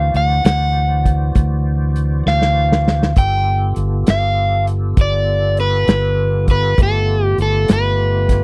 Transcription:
Already playing: fingered electric bass D2, tonewheel organ E3 F#4 C5 D5, overdriven electric guitar F5
0.14 fingered electric bass D2, overdriven electric guitar F#5, closed hi-hat
0.45 fingered electric bass D2, overdriven electric guitar F#5, snare, closed hi-hat
1.05 kick, closed hi-hat
1.35 fingered electric bass D2, kick, closed hi-hat
1.96 closed hi-hat
2.26 fingered electric bass D2, overdriven electric guitar F5, snare
2.42 snare
2.72 snare
2.88 snare
3.03 snare
3.16 fingered electric bass G1, tonewheel organ B3 F4 G4 A4, overdriven electric guitar G5, kick, closed hi-hat
3.76 fingered electric bass G1, closed hi-hat
4.07 fingered electric bass G1, overdriven electric guitar F5, snare, closed hi-hat
4.67 closed hi-hat
4.97 fingered electric bass G1, kick, closed hi-hat
5.01 overdriven electric guitar D5
5.57 overdriven electric guitar B4, closed hi-hat
5.87 fingered electric bass G1, snare, closed hi-hat
6.48 overdriven electric guitar B4, kick, closed hi-hat
6.78 fingered electric bass G1, tonewheel organ A3 B3 F4 G4, kick, closed hi-hat
6.83 overdriven electric guitar A4
7.25 overdriven electric guitar G4
7.38 fingered electric bass G1, closed hi-hat
7.42 overdriven electric guitar A4
7.68 fingered electric bass G1, snare, closed hi-hat
7.73 overdriven electric guitar B4
8.29 kick, snare, closed hi-hat

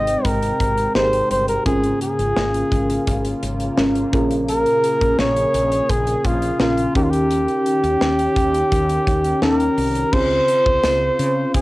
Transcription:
Already playing: fretless electric bass G#1, fm electric piano G#2 D#4 G4 G#4 C5, analog synth pad C3 G#3 G5, flugelhorn D#5
0.07 closed hi-hat
0.25 fretless electric bass G#1, flugelhorn A#4, kick, closed hi-hat
0.43 closed hi-hat
0.60 fretless electric bass G#1, kick, closed hi-hat
0.77 closed hi-hat
0.95 fretless electric bass G#1, fm electric piano D#4 G4 G#4 A#4, flugelhorn C5, snare
1.13 closed hi-hat
1.31 fretless electric bass G1, flugelhorn C5, closed hi-hat
1.48 flugelhorn A#4, closed hi-hat
1.66 fretless electric bass G#1, fm electric piano G#2 C#4 F4 G#4 A#4, analog synth pad C#3 A#3 F4, flugelhorn G#4, kick, closed hi-hat
1.83 closed hi-hat
2.01 flugelhorn G#4, closed hi-hat
2.19 fretless electric bass G#1, closed hi-hat
2.36 fretless electric bass G#1, snare
2.54 closed hi-hat
2.72 fretless electric bass G#1, kick, closed hi-hat
2.90 closed hi-hat
3.07 fretless electric bass G#1, kick, closed hi-hat
3.25 closed hi-hat
3.43 fretless electric bass G#1, closed hi-hat
3.60 closed hi-hat
3.77 fretless electric bass G#1, fm electric piano C#4 F4 G#4 A#4, snare
3.95 closed hi-hat
4.12 fretless electric bass A#1, fm electric piano A#2 C#4 F4 G#4 A#4, analog synth pad G#4, kick, closed hi-hat
4.31 closed hi-hat
4.48 flugelhorn A#4, closed hi-hat
4.66 closed hi-hat
4.84 closed hi-hat
5.01 fretless electric bass A#1, kick, closed hi-hat
5.19 fretless electric bass A#1, flugelhorn C#5, snare
5.36 closed hi-hat
5.54 fretless electric bass A#1, closed hi-hat
5.72 closed hi-hat
5.90 fretless electric bass A#1, flugelhorn G#4, kick, closed hi-hat
6.07 closed hi-hat
6.25 fretless electric bass A#1, flugelhorn F4, kick, closed hi-hat
6.42 closed hi-hat
6.59 fretless electric bass A#1, fm electric piano C#4 F4 G#4 A#4, flugelhorn F4, snare
6.78 closed hi-hat
6.95 fretless electric bass D#2, fm electric piano D#3 C#4 D#4 G4 A#4, analog synth pad D#3 C#4 G4, flugelhorn G4, kick, closed hi-hat
7.03 flugelhorn F4
7.10 flugelhorn G4, closed hi-hat
7.31 closed hi-hat
7.48 closed hi-hat
7.66 closed hi-hat
7.83 fretless electric bass D#2, closed hi-hat
8.01 fretless electric bass D#2, snare
8.19 closed hi-hat
8.36 fretless electric bass D#2, kick, closed hi-hat
8.54 closed hi-hat
8.72 fretless electric bass D#2, kick, closed hi-hat
8.89 closed hi-hat
9.07 fretless electric bass D#2, kick, closed hi-hat
9.24 closed hi-hat
9.42 fretless electric bass D#2, fm electric piano C#4 D#4 G4 A#4, flugelhorn A#4, snare
9.60 closed hi-hat
9.78 fretless electric bass C2, open hi-hat
9.95 closed hi-hat
10.13 fretless electric bass C#2, fm electric piano C#3 C4 C#4 F4 G#4, analog synth pad C#3 F4 C5, flugelhorn C5, kick, crash
10.48 closed hi-hat
10.66 fretless electric bass C#2, kick
10.84 fretless electric bass C#2, snare, closed hi-hat, tambourine
11.19 fretless electric bass C#3, closed hi-hat
11.54 fretless electric bass C#2, flugelhorn G#4, kick, closed hi-hat

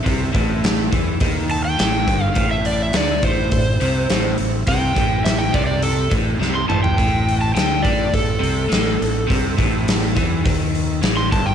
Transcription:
0.03 fingered electric bass C2, overdriven electric guitar C3, tonewheel organ C4 E5, kick, open hi-hat
0.08 tonewheel organ A4
0.32 fingered electric bass A1, overdriven electric guitar A2, kick, open hi-hat
0.64 snare, open hi-hat
0.92 fingered electric bass E2, overdriven electric guitar E3, kick, open hi-hat
1.20 fingered electric bass D#2, overdriven electric guitar D#3, kick, open hi-hat
1.50 electric slide guitar A5, open hi-hat
1.65 electric slide guitar G5
1.78 fingered electric bass A1, overdriven electric guitar A2, snare, open hi-hat
2.07 fingered electric bass G1, overdriven electric guitar G2, kick, open hi-hat
2.22 electric slide guitar F5
2.34 fingered electric bass A1, overdriven electric guitar A2, kick, open hi-hat
2.38 tonewheel organ A#3 C#4 F4
2.51 electric slide guitar E5
2.55 tonewheel organ A3 C4 E4
2.65 electric slide guitar D5, open hi-hat
2.82 electric slide guitar E5
2.93 fingered electric bass D2, overdriven electric guitar D3, electric slide guitar D5, snare, open hi-hat
3.22 fingered electric bass A1, overdriven electric guitar A2, electric slide guitar C5, kick, open hi-hat
3.52 fingered electric bass A1, overdriven electric guitar A2, kick, open hi-hat
3.81 fingered electric bass C2, overdriven electric guitar C3, open hi-hat
4.10 fingered electric bass A1, overdriven electric guitar A2, snare, open hi-hat
4.38 fingered electric bass A1, overdriven electric guitar A2, open hi-hat
4.65 fingered electric bass C2, overdriven electric guitar C3, tonewheel organ A3 C4 E4, electric slide guitar G5, kick, open hi-hat
4.95 fingered electric bass A1, overdriven electric guitar A2, kick, open hi-hat
5.25 electric slide guitar E5, snare, open hi-hat
5.39 electric slide guitar G5
5.53 fingered electric bass C2, overdriven electric guitar C3, electric slide guitar D5, kick, open hi-hat
5.67 electric slide guitar D5
5.82 electric slide guitar A4, open hi-hat
6.11 fingered electric bass A1, overdriven electric guitar A2, kick, open hi-hat
6.40 fingered electric bass C2, overdriven electric guitar C3, snare
6.55 electric slide guitar C6
6.68 fingered electric bass A1, overdriven electric guitar A2, electric slide guitar A5, mid tom
6.83 electric slide guitar G5, floor tom
6.96 fingered electric bass A1, overdriven electric guitar A2, tonewheel organ A3 C4 E4, kick, open hi-hat
7.29 open hi-hat
7.41 electric slide guitar A5
7.55 fingered electric bass D2, overdriven electric guitar D3, electric slide guitar G5, snare, open hi-hat
7.82 fingered electric bass A1, overdriven electric guitar A2, electric slide guitar D5, kick, open hi-hat
8.12 fingered electric bass A1, overdriven electric guitar A2, electric slide guitar A4, kick, open hi-hat
8.40 fingered electric bass C2, overdriven electric guitar C3, open hi-hat
8.69 fingered electric bass A1, overdriven electric guitar A2, snare, open hi-hat
8.99 fingered electric bass A1, overdriven electric guitar A2, open hi-hat
9.27 fingered electric bass C2, overdriven electric guitar C3, tonewheel organ C4 A4 E5, kick
9.32 open hi-hat
9.58 fingered electric bass A1, overdriven electric guitar A2, kick, open hi-hat
9.88 snare, open hi-hat
10.16 fingered electric bass E2, overdriven electric guitar E3, kick, open hi-hat
10.45 fingered electric bass D#2, overdriven electric guitar D#3, kick, open hi-hat
10.75 open hi-hat
11.03 fingered electric bass A1, overdriven electric guitar A2, snare, open hi-hat
11.17 electric slide guitar C6
11.31 fingered electric bass G1, overdriven electric guitar G2, electric slide guitar A5, kick, open hi-hat
11.46 electric slide guitar G5

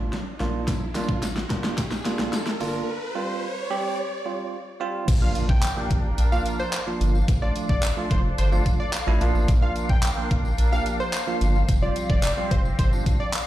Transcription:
Already playing: tine electric piano A3 D4 F4, riser
0.13 snare
0.40 analog synth bass A#1, tine electric piano A#3 D4 F4, snare
0.68 kick, snare, closed hi-hat, tambourine
0.95 tine electric piano A#3 D4 F4, snare, closed hi-hat, tambourine
1.09 analog synth bass A#1, kick
1.22 analog synth bass A1, snare, closed hi-hat, tambourine
1.36 snare
1.50 tine electric piano A#3 D4 F4, kick, snare, closed hi-hat
1.64 snare
1.78 kick, snare, closed hi-hat, tambourine
1.91 analog synth bass A#1, snare, tambourine
2.05 tine electric piano A#3 D4 F4, snare, closed hi-hat, tambourine
2.19 analog synth bass A#1, snare
2.33 snare, closed hi-hat, tambourine
2.46 snare, tambourine
2.60 analog synth bass G1, tine electric piano A#3 D4 F4, open hi-hat, tambourine
3.15 tine electric piano G3 C4 F4
3.70 tine electric piano G3 C4 G4
4.25 tine electric piano G3 C4 F4
4.80 tine electric piano G3 C4 F4
5.08 analog synth bass A#1, flute section D4 A#4 F5, kick, closed hi-hat, crash, tambourine, impact
5.22 tine electric piano F3 A#3 D4 F4, digital synth lead F5
5.35 closed hi-hat, tambourine
5.49 analog synth bass A#1, digital synth lead G5, kick
5.63 clap, closed hi-hat, tambourine
5.77 tine electric piano F3 A#3 D4 G4
5.91 analog synth bass A1, kick, closed hi-hat
6.18 analog synth bass A#1, closed hi-hat, tambourine
6.32 tine electric piano F3 A#3 D4 F4, digital synth lead F5, tambourine
6.46 closed hi-hat, tambourine
6.59 digital synth lead C5, tambourine
6.73 clap, closed hi-hat, tambourine
6.87 tine electric piano F3 A#3 D4 F4
7.01 analog synth bass G1, closed hi-hat, tambourine
7.15 tambourine
7.28 analog synth bass A1, flute section D4 A4, kick, closed hi-hat, tambourine
7.42 tine electric piano F3 A3 D4 F4, digital synth lead D5
7.56 closed hi-hat, tambourine
7.69 analog synth bass A1, digital synth lead D5, kick
7.83 clap, closed hi-hat, tambourine
7.97 tine electric piano F3 A3 D4 F4
8.11 analog synth bass F1, digital synth lead C5, kick, closed hi-hat
8.38 analog synth bass G1, digital synth lead C5, closed hi-hat, tambourine
8.52 tine electric piano F3 A3 D4 F4, tambourine
8.66 kick, closed hi-hat, tambourine
8.80 digital synth lead D5
8.93 clap, closed hi-hat, tambourine
9.07 analog synth bass A1, tine electric piano F3 A3 D4 E4
9.21 analog synth bass A#1, tine electric piano F3 A#3 D4 F4, flute section D4 A#4, closed hi-hat, tambourine
9.35 analog synth bass A1, tambourine
9.48 analog synth bass A#1, kick, closed hi-hat, tambourine
9.62 tine electric piano F3 A#3 D4 F4, digital synth lead F5
9.76 closed hi-hat, tambourine
9.89 analog synth bass A#1, digital synth lead G5, kick
10.03 clap, closed hi-hat, tambourine
10.17 tine electric piano F3 A#3 D4 F4
10.31 analog synth bass A1, kick, closed hi-hat
10.45 tambourine
10.58 analog synth bass A#1, closed hi-hat, tambourine
10.72 tine electric piano F3 A#3 D4 G4, digital synth lead F5, tambourine
10.86 closed hi-hat, tambourine
11.00 digital synth lead C5, tambourine
11.13 clap, closed hi-hat, tambourine
11.27 tine electric piano F3 A#3 D4 F4, tambourine
11.41 analog synth bass G1, closed hi-hat, tambourine
11.55 tambourine
11.69 analog synth bass F1, flute section C4 G4, kick, closed hi-hat, tambourine
11.82 tine electric piano F3 G3 C4 F4, digital synth lead D5
11.96 closed hi-hat, tambourine
12.10 analog synth bass F1, digital synth lead D5, kick
12.23 clap, closed hi-hat, tambourine
12.37 tine electric piano F3 G3 C4 F4
12.51 analog synth bass F1, digital synth lead C5, kick, closed hi-hat
12.65 tambourine
12.79 analog synth bass G1, digital synth lead C5, kick, closed hi-hat, tambourine
12.92 tine electric piano F3 G3 C4 D4, tambourine
13.06 kick, closed hi-hat, tambourine
13.20 digital synth lead D5
13.34 clap, closed hi-hat, tambourine

